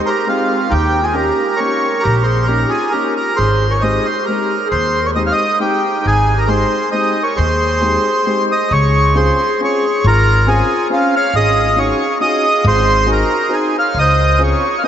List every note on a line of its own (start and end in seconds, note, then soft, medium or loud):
0.03 0.26 G4 medium
0.03 0.06 G#4 soft
0.03 0.28 A#4 medium
0.03 0.09 C5 medium
0.27 0.50 G#3 soft
0.27 0.51 C4 soft
0.27 0.69 C4 medium
0.27 0.51 D#4 medium
0.27 0.73 F4 medium
0.27 0.51 G4 medium
0.69 1.29 D#2 loud
0.69 1.01 D#4 medium
0.69 1.06 G4 medium
1.02 1.13 F4 medium
1.02 1.15 G#4 medium
1.13 1.38 A#3 medium
1.13 1.38 C#4 medium
1.13 1.39 D#4 medium
1.13 1.57 G4 medium
1.13 1.39 G4 medium
1.13 1.60 A#4 medium
1.57 1.83 A#3 medium
1.57 1.84 C#4 soft
1.57 1.84 D#4 medium
1.57 2.00 A#4 medium
1.57 2.04 C#5 medium
1.61 1.84 G4 medium
2.00 2.24 G4 medium
2.00 2.26 A#4 loud
2.05 2.63 A#1 loud
2.23 2.46 G#4 medium
2.23 2.47 C5 medium
2.43 2.70 A#4 medium
2.47 2.72 A#3 soft
2.47 2.72 C#4 medium
2.47 2.73 D#4 medium
2.47 2.68 G4 medium
2.47 2.73 G4 medium
2.68 2.90 F4 medium
2.68 2.93 G#4 medium
2.90 3.17 C#4 soft
2.90 3.15 G4 medium
2.90 3.15 A#4 medium
2.94 3.18 A#3 soft
2.94 3.18 D#4 soft
2.94 3.18 G4 medium
3.16 3.35 G4 medium
3.16 3.39 A#4 medium
3.36 3.97 G#1 medium
3.36 3.69 G#4 medium
3.36 3.73 C5 loud
3.69 3.78 A#4 medium
3.69 3.83 C#5 medium
3.78 4.06 G#3 medium
3.78 4.01 C5 medium
3.78 4.07 D#5 medium
3.83 4.07 C4 medium
3.83 4.07 D#4 medium
3.83 4.07 G4 medium
4.02 4.22 G#4 medium
4.02 4.26 C5 medium
4.22 4.53 G4 medium
4.22 4.68 A#4 medium
4.28 4.51 G#3 medium
4.28 4.52 C4 soft
4.28 4.52 D#4 soft
4.28 4.52 G4 medium
4.67 5.01 G#4 medium
4.71 5.29 D#2 loud
4.71 5.07 C5 medium
5.02 5.08 A#4 medium
5.06 5.11 C#5 medium
5.13 5.39 G#3 medium
5.13 5.40 C4 medium
5.13 5.40 D#4 medium
5.13 5.40 G4 medium
5.13 5.22 C5 medium
5.13 5.23 D#5 medium
5.26 5.28 C#5 medium
5.26 5.33 F5 medium
5.32 5.59 D#5 loud
5.58 5.84 G#3 medium
5.58 5.84 C4 soft
5.58 6.00 D#4 medium
5.58 5.84 D#4 medium
5.58 6.06 G4 medium
5.58 5.85 G4 medium
6.01 6.34 D#4 medium
6.05 6.63 G#1 medium
6.05 6.41 G#4 loud
6.35 6.45 G4 medium
6.35 6.49 A#4 medium
6.46 6.72 G#3 medium
6.46 6.72 C4 soft
6.46 6.72 D#4 medium
6.46 6.72 G4 medium
6.46 6.89 G#4 medium
6.46 6.90 C5 medium
6.91 7.16 G#3 medium
6.91 7.16 C4 medium
6.91 7.16 D#4 medium
6.91 7.16 G4 medium
6.91 7.19 C5 medium
6.91 7.23 D#5 medium
7.22 7.34 A#4 medium
7.22 7.38 C#5 medium
7.35 7.96 D#2 loud
7.35 8.45 G#4 medium
7.35 8.45 C5 loud
7.81 8.05 G#3 medium
7.81 8.05 C4 medium
7.81 8.05 D#4 medium
7.81 8.05 G4 medium
8.26 8.50 G#3 medium
8.26 8.50 C4 medium
8.26 8.50 D#4 medium
8.26 8.50 G4 medium
8.51 8.70 C5 medium
8.51 8.73 D#5 medium
8.71 9.28 C#2 loud
8.71 9.12 G#4 medium
8.71 9.17 C#5 loud
9.15 9.38 C4 medium
9.15 9.38 C#4 medium
9.15 9.38 F4 medium
9.15 9.39 G#4 medium
9.15 9.57 G#4 medium
9.15 9.61 C5 medium
9.60 9.83 C4 soft
9.60 9.83 C#4 medium
9.60 9.83 F4 soft
9.60 9.83 G#4 medium
9.60 10.02 G#4 medium
9.60 10.07 C#5 medium
10.04 10.61 G#1 loud
10.04 10.45 F4 medium
10.04 10.50 A#4 loud
10.47 10.70 C4 medium
10.47 10.70 C#4 medium
10.47 10.70 F4 medium
10.47 10.89 F4 medium
10.47 10.70 G#4 medium
10.47 10.88 G#4 medium
10.90 11.13 C4 medium
10.90 11.13 C#4 medium
10.90 11.13 F4 soft
10.90 11.15 F4 medium
10.90 11.13 G#4 medium
10.94 11.13 C#4 medium
11.16 11.34 C#5 medium
11.16 11.36 F5 loud
11.33 11.90 G#1 medium
11.33 11.75 G#4 loud
11.33 11.79 D#5 loud
11.76 11.99 C#4 medium
11.76 12.00 D#4 medium
11.76 12.00 F#4 medium
11.76 12.00 G#4 medium
11.76 12.19 G#4 medium
11.76 12.18 C#5 medium
12.21 12.43 C#4 medium
12.21 12.44 D#4 medium
12.21 12.44 F#4 medium
12.21 12.44 G#4 medium
12.21 12.66 D#5 loud
12.25 12.64 G#4 medium
12.64 13.21 G#1 loud
12.64 13.06 G#4 loud
12.64 13.11 C5 loud
13.06 13.30 C4 medium
13.06 13.30 D#4 medium
13.06 13.30 F#4 medium
13.06 13.42 F#4 medium
13.06 13.30 G#4 medium
13.12 13.55 A#4 medium
13.49 13.74 C4 medium
13.49 13.74 D#4 medium
13.49 13.73 F#4 medium
13.49 13.74 G#4 medium
13.54 13.74 D#4 medium
13.54 13.77 G#4 medium
13.77 13.96 C#5 medium
13.77 13.98 F5 medium
13.94 14.52 C#2 medium
13.99 14.39 C5 loud
13.99 14.42 D#5 loud
14.38 14.62 C4 medium
14.38 14.62 C#4 medium
14.38 14.62 F4 medium
14.38 14.62 G#4 medium
14.43 14.77 G#4 medium
14.43 14.81 C#5 medium
14.77 14.83 C#5 medium
14.77 14.83 F5 medium
14.83 14.88 C4 medium
14.83 14.88 C#4 medium
14.83 14.88 F4 medium
14.83 14.88 G#4 medium
14.83 14.88 C5 medium
14.83 14.88 D#5 medium